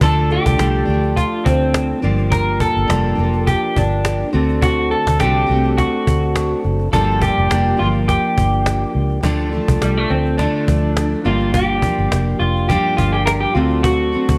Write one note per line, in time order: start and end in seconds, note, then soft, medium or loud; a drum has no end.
0.00 0.37 D2 medium
0.00 0.58 D3 medium
0.00 1.98 F3 medium
0.00 0.59 F3 medium
0.00 1.99 A3 medium
0.00 0.60 A3 medium
0.00 2.00 D4 medium
0.00 0.61 D4 medium
0.00 0.32 A4 loud
0.00 cajon bass loud
0.04 2.01 A4 medium
0.17 cajon slap soft
0.30 1.16 G4 loud
0.30 cajon slap soft
0.46 0.57 C2 medium
0.46 cajon bass loud
0.58 0.82 C2 medium
0.58 0.87 D3 medium
0.58 0.88 F3 medium
0.58 0.89 A3 medium
0.58 0.84 D4 medium
0.58 cajon slap loud
0.85 1.24 D2 medium
0.85 2.02 D4 medium
0.85 cajon slap soft
0.90 2.04 F3 soft
0.90 2.03 A3 medium
1.03 cajon slap soft
1.16 1.46 F4 medium
1.16 cajon bass medium
1.16 cajon slap medium
1.45 1.92 D2 loud
1.45 1.99 C4 medium
1.45 cajon bass medium
1.74 cajon slap loud
1.90 cajon slap soft
2.00 2.62 G1 loud
2.00 4.28 F3 medium
2.00 4.29 A#3 medium
2.00 2.89 A#3 medium
2.00 2.92 D4 medium
2.00 4.30 D4 medium
2.00 cajon slap soft
2.04 2.87 G2 medium
2.04 2.88 F3 medium
2.04 4.31 G4 medium
2.18 cajon slap soft
2.31 2.60 A#4 loud
2.31 cajon bass loud
2.48 cajon slap soft
2.60 3.47 A4 loud
2.60 cajon bass medium
2.77 2.87 G1 medium
2.77 cajon slap soft
2.88 3.12 F1 medium
2.88 3.18 G2 medium
2.88 3.18 F3 medium
2.88 3.19 A#3 medium
2.88 cajon slap loud
2.92 3.14 D4 medium
3.15 3.54 F1 medium
3.15 4.32 D4 medium
3.15 cajon slap soft
3.20 4.34 F3 soft
3.20 4.33 A#3 medium
3.33 cajon slap soft
3.47 3.77 G4 medium
3.47 cajon bass medium
3.47 cajon slap medium
3.76 4.23 G1 loud
3.76 4.30 D4 medium
3.76 cajon bass medium
3.91 cajon slap soft
4.05 cajon slap loud
4.20 cajon slap soft
4.31 4.93 D2 medium
4.31 6.88 A3 medium
4.31 5.20 A3 medium
4.31 6.89 C4 medium
4.31 5.20 C4 medium
4.31 6.89 D4 medium
4.31 5.20 F#4 medium
4.31 cajon slap soft
4.35 5.19 D3 medium
4.35 6.90 A4 medium
4.49 cajon slap soft
4.62 4.91 F#4 medium
4.62 cajon bass loud
4.78 cajon slap soft
4.91 5.20 A4 loud
4.91 cajon slap soft
5.07 5.22 D2 medium
5.07 cajon bass loud
5.19 5.44 C2 medium
5.19 5.49 D3 medium
5.19 5.49 A3 medium
5.19 5.50 C4 medium
5.19 5.45 F#4 medium
5.19 5.77 G4 medium
5.19 cajon slap medium
5.46 5.85 C2 medium
5.46 6.92 F#4 medium
5.46 cajon slap soft
5.51 6.93 A3 soft
5.51 6.94 C4 soft
5.64 cajon slap soft
5.78 6.60 F#4 medium
5.78 cajon bass medium
5.78 cajon slap soft
6.07 6.53 D2 medium
6.07 cajon bass medium
6.22 cajon slap soft
6.36 cajon slap loud
6.51 cajon slap soft
6.64 6.88 F#1 medium
6.64 cajon slap soft
6.80 cajon slap soft
6.91 7.29 G1 loud
6.91 7.49 G2 medium
6.91 9.19 F3 medium
6.91 7.51 F3 medium
6.91 9.19 A#3 medium
6.91 7.51 A#3 medium
6.91 9.20 D4 medium
6.91 7.22 A4 loud
6.91 cajon bass loud
6.95 7.53 D4 medium
6.95 9.21 G4 medium
7.22 7.79 G4 medium
7.22 cajon bass loud
7.38 7.48 F1 medium
7.38 cajon slap soft
7.50 7.74 F1 medium
7.50 7.79 G2 medium
7.50 7.80 F3 medium
7.50 7.80 A#3 medium
7.50 7.76 D4 medium
7.50 cajon slap loud
7.66 cajon slap soft
7.77 8.16 G1 medium
7.77 9.25 D4 medium
7.77 7.87 F4 medium
7.77 cajon slap soft
7.82 9.23 F3 soft
7.82 9.24 A#3 medium
7.94 cajon slap soft
8.08 8.91 G4 medium
8.08 cajon bass medium
8.08 cajon slap medium
8.24 cajon slap soft
8.38 8.84 G1 medium
8.38 cajon bass medium
8.53 cajon slap soft
8.66 cajon slap loud
8.82 cajon slap soft
8.95 9.18 C#2 medium
9.10 cajon slap soft
9.21 9.59 D2 medium
9.21 9.52 D3 medium
9.21 11.20 F3 medium
9.21 9.52 F3 medium
9.21 11.21 A3 medium
9.21 9.53 A3 medium
9.21 11.21 D4 medium
9.21 cajon bass loud
9.25 9.50 D4 loud
9.25 11.22 A4 medium
9.40 cajon slap soft
9.52 10.39 F3 soft
9.52 10.39 A3 soft
9.52 10.40 D4 medium
9.52 cajon slap soft
9.68 9.79 C2 medium
9.68 cajon bass loud
9.81 10.04 C2 medium
9.81 9.97 G3 medium
9.81 cajon slap medium
9.97 10.11 A3 medium
10.10 10.46 D2 medium
10.10 10.38 C4 medium
10.10 cajon slap soft
10.25 cajon slap soft
10.38 10.67 D3 medium
10.38 10.68 F3 medium
10.38 10.68 A3 medium
10.38 11.27 D4 medium
10.38 10.66 D4 medium
10.38 cajon bass medium
10.38 cajon slap soft
10.67 11.14 D2 medium
10.67 11.26 F3 soft
10.67 11.25 A3 soft
10.67 11.24 D4 soft
10.67 cajon bass medium
10.83 cajon slap soft
10.97 cajon slap medium
11.12 cajon slap soft
11.22 11.84 G1 medium
11.22 13.50 F3 medium
11.22 13.51 A#3 medium
11.22 11.83 A#3 medium
11.22 11.81 D4 medium
11.22 13.52 D4 medium
11.22 11.53 F4 medium
11.22 cajon slap soft
11.27 11.84 G2 medium
11.27 11.84 F3 soft
11.27 13.53 G4 medium
11.41 cajon slap soft
11.54 12.39 G4 medium
11.54 cajon bass loud
11.71 cajon slap soft
11.82 12.69 A#3 soft
11.82 12.71 D4 soft
11.82 cajon bass medium
11.86 12.68 F3 soft
11.98 12.09 G1 medium
11.98 cajon slap soft
12.11 12.34 F1 medium
12.11 cajon slap medium
12.39 12.76 F1 medium
12.39 12.67 F4 medium
12.39 cajon slap soft
12.56 cajon slap soft
12.69 13.55 G2 medium
12.69 13.56 F3 medium
12.69 13.55 A#3 medium
12.69 13.54 D4 medium
12.69 12.97 G4 medium
12.69 cajon bass medium
12.69 cajon slap medium
12.97 13.44 G1 loud
12.97 13.12 F4 medium
12.97 cajon bass medium
13.12 13.25 G4 medium
13.26 13.31 A#4 medium
13.26 cajon slap loud
13.40 13.54 G4 medium
13.40 cajon slap soft
13.53 14.14 D2 medium
13.53 14.38 F#3 medium
13.53 14.14 A3 medium
13.53 14.38 C4 medium
13.53 14.13 C4 medium
13.53 14.38 D4 medium
13.53 13.83 F4 medium
13.53 14.11 F#4 medium
13.53 cajon slap soft
13.57 14.17 D3 medium
13.57 14.38 A4 medium
13.71 cajon slap soft
13.83 14.38 F#4 medium
13.83 cajon bass loud
14.01 cajon slap soft
14.12 14.38 C4 soft
14.12 14.38 F#4 soft
14.12 cajon slap soft
14.16 14.38 A3 soft
14.29 14.38 D2 medium
14.29 cajon bass loud